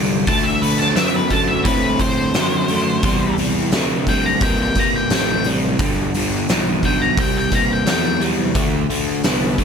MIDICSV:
0, 0, Header, 1, 6, 480
1, 0, Start_track
1, 0, Tempo, 689655
1, 193, Time_signature, 4, 2, 24, 8
1, 6710, End_track
2, 0, Start_track
2, 0, Title_t, "Lead electric guitar"
2, 0, Program_c, 0, 29
2, 193, Note_on_c, 0, 81, 92
2, 301, Note_on_c, 0, 76, 85
2, 309, Note_off_c, 0, 81, 0
2, 424, Note_off_c, 0, 76, 0
2, 430, Note_on_c, 0, 71, 82
2, 548, Note_off_c, 0, 71, 0
2, 548, Note_on_c, 0, 81, 89
2, 666, Note_on_c, 0, 76, 86
2, 667, Note_off_c, 0, 81, 0
2, 786, Note_off_c, 0, 76, 0
2, 810, Note_on_c, 0, 71, 83
2, 910, Note_on_c, 0, 81, 86
2, 919, Note_off_c, 0, 71, 0
2, 1028, Note_on_c, 0, 76, 81
2, 1029, Note_off_c, 0, 81, 0
2, 1140, Note_on_c, 0, 71, 82
2, 1147, Note_off_c, 0, 76, 0
2, 1380, Note_off_c, 0, 71, 0
2, 1398, Note_on_c, 0, 72, 86
2, 2329, Note_off_c, 0, 72, 0
2, 2846, Note_on_c, 0, 79, 91
2, 2957, Note_off_c, 0, 79, 0
2, 2963, Note_on_c, 0, 82, 80
2, 3076, Note_off_c, 0, 82, 0
2, 3083, Note_on_c, 0, 79, 85
2, 3196, Note_off_c, 0, 79, 0
2, 3219, Note_on_c, 0, 79, 92
2, 3324, Note_off_c, 0, 79, 0
2, 3336, Note_on_c, 0, 82, 94
2, 3442, Note_off_c, 0, 82, 0
2, 3450, Note_on_c, 0, 79, 83
2, 3559, Note_off_c, 0, 79, 0
2, 3587, Note_on_c, 0, 79, 113
2, 3804, Note_off_c, 0, 79, 0
2, 4770, Note_on_c, 0, 79, 82
2, 4878, Note_off_c, 0, 79, 0
2, 4884, Note_on_c, 0, 82, 81
2, 4995, Note_off_c, 0, 82, 0
2, 5013, Note_on_c, 0, 79, 97
2, 5119, Note_off_c, 0, 79, 0
2, 5138, Note_on_c, 0, 79, 103
2, 5242, Note_off_c, 0, 79, 0
2, 5255, Note_on_c, 0, 82, 81
2, 5360, Note_off_c, 0, 82, 0
2, 5379, Note_on_c, 0, 79, 86
2, 5482, Note_off_c, 0, 79, 0
2, 5499, Note_on_c, 0, 79, 93
2, 5718, Note_off_c, 0, 79, 0
2, 6710, End_track
3, 0, Start_track
3, 0, Title_t, "Overdriven electric guitar"
3, 0, Program_c, 1, 29
3, 0, Note_on_c, 1, 43, 73
3, 0, Note_on_c, 1, 50, 77
3, 171, Note_off_c, 1, 43, 0
3, 174, Note_off_c, 1, 50, 0
3, 197, Note_on_c, 1, 50, 83
3, 203, Note_on_c, 1, 57, 86
3, 412, Note_off_c, 1, 50, 0
3, 414, Note_off_c, 1, 57, 0
3, 436, Note_on_c, 1, 50, 78
3, 438, Note_on_c, 1, 57, 73
3, 651, Note_off_c, 1, 50, 0
3, 652, Note_off_c, 1, 57, 0
3, 671, Note_on_c, 1, 50, 72
3, 675, Note_on_c, 1, 59, 89
3, 889, Note_off_c, 1, 50, 0
3, 891, Note_off_c, 1, 59, 0
3, 916, Note_on_c, 1, 50, 77
3, 921, Note_on_c, 1, 57, 78
3, 1131, Note_off_c, 1, 50, 0
3, 1134, Note_off_c, 1, 57, 0
3, 1159, Note_on_c, 1, 50, 80
3, 1161, Note_on_c, 1, 60, 80
3, 1373, Note_off_c, 1, 50, 0
3, 1374, Note_off_c, 1, 60, 0
3, 1397, Note_on_c, 1, 50, 79
3, 1404, Note_on_c, 1, 60, 79
3, 1612, Note_off_c, 1, 50, 0
3, 1616, Note_off_c, 1, 60, 0
3, 1640, Note_on_c, 1, 50, 88
3, 1644, Note_on_c, 1, 59, 90
3, 1854, Note_off_c, 1, 50, 0
3, 1855, Note_off_c, 1, 59, 0
3, 1877, Note_on_c, 1, 50, 68
3, 1881, Note_on_c, 1, 57, 80
3, 2092, Note_off_c, 1, 50, 0
3, 2094, Note_off_c, 1, 57, 0
3, 2117, Note_on_c, 1, 48, 85
3, 2123, Note_on_c, 1, 55, 103
3, 2332, Note_off_c, 1, 48, 0
3, 2335, Note_off_c, 1, 55, 0
3, 2362, Note_on_c, 1, 48, 75
3, 2366, Note_on_c, 1, 55, 92
3, 2575, Note_off_c, 1, 48, 0
3, 2577, Note_off_c, 1, 55, 0
3, 2599, Note_on_c, 1, 48, 74
3, 2606, Note_on_c, 1, 57, 86
3, 2813, Note_off_c, 1, 48, 0
3, 2817, Note_off_c, 1, 57, 0
3, 2843, Note_on_c, 1, 48, 80
3, 2845, Note_on_c, 1, 55, 76
3, 3055, Note_off_c, 1, 48, 0
3, 3056, Note_off_c, 1, 55, 0
3, 3081, Note_on_c, 1, 48, 74
3, 3086, Note_on_c, 1, 58, 83
3, 3294, Note_off_c, 1, 48, 0
3, 3296, Note_off_c, 1, 58, 0
3, 3323, Note_on_c, 1, 48, 70
3, 3326, Note_on_c, 1, 58, 80
3, 3535, Note_off_c, 1, 48, 0
3, 3536, Note_off_c, 1, 58, 0
3, 3566, Note_on_c, 1, 48, 97
3, 3570, Note_on_c, 1, 57, 86
3, 3776, Note_off_c, 1, 48, 0
3, 3778, Note_off_c, 1, 57, 0
3, 3800, Note_on_c, 1, 48, 76
3, 3800, Note_on_c, 1, 55, 81
3, 4013, Note_off_c, 1, 48, 0
3, 4013, Note_off_c, 1, 55, 0
3, 4034, Note_on_c, 1, 43, 72
3, 4040, Note_on_c, 1, 50, 103
3, 4250, Note_off_c, 1, 43, 0
3, 4253, Note_off_c, 1, 50, 0
3, 4279, Note_on_c, 1, 43, 81
3, 4286, Note_on_c, 1, 50, 91
3, 4492, Note_off_c, 1, 43, 0
3, 4496, Note_off_c, 1, 50, 0
3, 4522, Note_on_c, 1, 43, 76
3, 4522, Note_on_c, 1, 52, 86
3, 4733, Note_off_c, 1, 43, 0
3, 4733, Note_off_c, 1, 52, 0
3, 4755, Note_on_c, 1, 43, 63
3, 4762, Note_on_c, 1, 50, 87
3, 4970, Note_off_c, 1, 43, 0
3, 4973, Note_off_c, 1, 50, 0
3, 4999, Note_on_c, 1, 48, 74
3, 5001, Note_on_c, 1, 55, 82
3, 5211, Note_off_c, 1, 48, 0
3, 5212, Note_off_c, 1, 55, 0
3, 5233, Note_on_c, 1, 48, 69
3, 5236, Note_on_c, 1, 58, 80
3, 5448, Note_off_c, 1, 48, 0
3, 5450, Note_off_c, 1, 58, 0
3, 5472, Note_on_c, 1, 48, 91
3, 5474, Note_on_c, 1, 57, 98
3, 5688, Note_off_c, 1, 48, 0
3, 5688, Note_off_c, 1, 57, 0
3, 5712, Note_on_c, 1, 48, 75
3, 5715, Note_on_c, 1, 55, 81
3, 5927, Note_off_c, 1, 48, 0
3, 5929, Note_off_c, 1, 55, 0
3, 5949, Note_on_c, 1, 50, 87
3, 5954, Note_on_c, 1, 57, 90
3, 6165, Note_off_c, 1, 50, 0
3, 6168, Note_off_c, 1, 57, 0
3, 6195, Note_on_c, 1, 50, 81
3, 6195, Note_on_c, 1, 57, 82
3, 6408, Note_off_c, 1, 50, 0
3, 6408, Note_off_c, 1, 57, 0
3, 6436, Note_on_c, 1, 50, 77
3, 6439, Note_on_c, 1, 59, 95
3, 6648, Note_off_c, 1, 50, 0
3, 6650, Note_off_c, 1, 59, 0
3, 6671, Note_on_c, 1, 50, 62
3, 6675, Note_on_c, 1, 57, 81
3, 6710, Note_off_c, 1, 50, 0
3, 6710, Note_off_c, 1, 57, 0
3, 6710, End_track
4, 0, Start_track
4, 0, Title_t, "Picked electric bass"
4, 0, Program_c, 2, 34
4, 0, Note_on_c, 2, 36, 92
4, 181, Note_off_c, 2, 36, 0
4, 194, Note_on_c, 2, 38, 67
4, 660, Note_off_c, 2, 38, 0
4, 668, Note_on_c, 2, 42, 88
4, 1137, Note_off_c, 2, 42, 0
4, 1150, Note_on_c, 2, 45, 88
4, 1618, Note_off_c, 2, 45, 0
4, 1636, Note_on_c, 2, 42, 100
4, 2101, Note_off_c, 2, 42, 0
4, 2111, Note_on_c, 2, 40, 76
4, 2579, Note_off_c, 2, 40, 0
4, 2596, Note_on_c, 2, 38, 86
4, 3061, Note_off_c, 2, 38, 0
4, 3071, Note_on_c, 2, 36, 92
4, 3296, Note_off_c, 2, 36, 0
4, 3554, Note_on_c, 2, 33, 97
4, 4020, Note_off_c, 2, 33, 0
4, 4033, Note_on_c, 2, 31, 81
4, 4499, Note_off_c, 2, 31, 0
4, 4514, Note_on_c, 2, 35, 100
4, 4979, Note_off_c, 2, 35, 0
4, 4993, Note_on_c, 2, 36, 94
4, 5457, Note_off_c, 2, 36, 0
4, 5472, Note_on_c, 2, 40, 95
4, 5936, Note_off_c, 2, 40, 0
4, 5955, Note_on_c, 2, 38, 76
4, 6418, Note_off_c, 2, 38, 0
4, 6434, Note_on_c, 2, 36, 94
4, 6710, Note_off_c, 2, 36, 0
4, 6710, End_track
5, 0, Start_track
5, 0, Title_t, "Muted picked electric bass strokes"
5, 3307, Note_on_c, 9, 29, 47
5, 3377, Note_off_c, 9, 29, 0
5, 6710, End_track
6, 0, Start_track
6, 0, Title_t, "Drums"
6, 189, Note_on_c, 9, 46, 79
6, 190, Note_on_c, 9, 36, 97
6, 259, Note_off_c, 9, 46, 0
6, 260, Note_off_c, 9, 36, 0
6, 436, Note_on_c, 9, 46, 58
6, 505, Note_off_c, 9, 46, 0
6, 557, Note_on_c, 9, 38, 30
6, 627, Note_off_c, 9, 38, 0
6, 671, Note_on_c, 9, 46, 79
6, 675, Note_on_c, 9, 38, 104
6, 740, Note_off_c, 9, 46, 0
6, 745, Note_off_c, 9, 38, 0
6, 907, Note_on_c, 9, 46, 58
6, 909, Note_on_c, 9, 36, 62
6, 977, Note_off_c, 9, 46, 0
6, 978, Note_off_c, 9, 36, 0
6, 1149, Note_on_c, 9, 36, 103
6, 1149, Note_on_c, 9, 46, 80
6, 1219, Note_off_c, 9, 36, 0
6, 1219, Note_off_c, 9, 46, 0
6, 1388, Note_on_c, 9, 46, 57
6, 1389, Note_on_c, 9, 36, 72
6, 1457, Note_off_c, 9, 46, 0
6, 1458, Note_off_c, 9, 36, 0
6, 1630, Note_on_c, 9, 46, 75
6, 1634, Note_on_c, 9, 38, 115
6, 1699, Note_off_c, 9, 46, 0
6, 1704, Note_off_c, 9, 38, 0
6, 1868, Note_on_c, 9, 46, 56
6, 1937, Note_off_c, 9, 46, 0
6, 2107, Note_on_c, 9, 46, 76
6, 2110, Note_on_c, 9, 36, 118
6, 2177, Note_off_c, 9, 46, 0
6, 2180, Note_off_c, 9, 36, 0
6, 2352, Note_on_c, 9, 46, 53
6, 2422, Note_off_c, 9, 46, 0
6, 2588, Note_on_c, 9, 46, 70
6, 2593, Note_on_c, 9, 38, 110
6, 2658, Note_off_c, 9, 46, 0
6, 2663, Note_off_c, 9, 38, 0
6, 2832, Note_on_c, 9, 36, 72
6, 2834, Note_on_c, 9, 46, 50
6, 2901, Note_off_c, 9, 36, 0
6, 2903, Note_off_c, 9, 46, 0
6, 3068, Note_on_c, 9, 46, 70
6, 3070, Note_on_c, 9, 36, 110
6, 3137, Note_off_c, 9, 46, 0
6, 3140, Note_off_c, 9, 36, 0
6, 3308, Note_on_c, 9, 46, 53
6, 3311, Note_on_c, 9, 36, 72
6, 3377, Note_off_c, 9, 46, 0
6, 3381, Note_off_c, 9, 36, 0
6, 3552, Note_on_c, 9, 46, 81
6, 3557, Note_on_c, 9, 38, 105
6, 3622, Note_off_c, 9, 46, 0
6, 3626, Note_off_c, 9, 38, 0
6, 3788, Note_on_c, 9, 46, 47
6, 3857, Note_off_c, 9, 46, 0
6, 4032, Note_on_c, 9, 36, 110
6, 4032, Note_on_c, 9, 46, 79
6, 4102, Note_off_c, 9, 36, 0
6, 4102, Note_off_c, 9, 46, 0
6, 4276, Note_on_c, 9, 46, 59
6, 4345, Note_off_c, 9, 46, 0
6, 4517, Note_on_c, 9, 46, 73
6, 4522, Note_on_c, 9, 38, 99
6, 4587, Note_off_c, 9, 46, 0
6, 4592, Note_off_c, 9, 38, 0
6, 4754, Note_on_c, 9, 36, 62
6, 4756, Note_on_c, 9, 46, 51
6, 4823, Note_off_c, 9, 36, 0
6, 4826, Note_off_c, 9, 46, 0
6, 4994, Note_on_c, 9, 36, 113
6, 4996, Note_on_c, 9, 46, 79
6, 5063, Note_off_c, 9, 36, 0
6, 5065, Note_off_c, 9, 46, 0
6, 5232, Note_on_c, 9, 36, 72
6, 5234, Note_on_c, 9, 46, 58
6, 5302, Note_off_c, 9, 36, 0
6, 5304, Note_off_c, 9, 46, 0
6, 5476, Note_on_c, 9, 46, 83
6, 5480, Note_on_c, 9, 38, 110
6, 5545, Note_off_c, 9, 46, 0
6, 5550, Note_off_c, 9, 38, 0
6, 5717, Note_on_c, 9, 46, 48
6, 5787, Note_off_c, 9, 46, 0
6, 5952, Note_on_c, 9, 36, 107
6, 5953, Note_on_c, 9, 46, 77
6, 6021, Note_off_c, 9, 36, 0
6, 6022, Note_off_c, 9, 46, 0
6, 6198, Note_on_c, 9, 46, 57
6, 6267, Note_off_c, 9, 46, 0
6, 6429, Note_on_c, 9, 46, 74
6, 6434, Note_on_c, 9, 38, 104
6, 6499, Note_off_c, 9, 46, 0
6, 6504, Note_off_c, 9, 38, 0
6, 6670, Note_on_c, 9, 36, 70
6, 6673, Note_on_c, 9, 46, 49
6, 6710, Note_off_c, 9, 36, 0
6, 6710, Note_off_c, 9, 46, 0
6, 6710, End_track
0, 0, End_of_file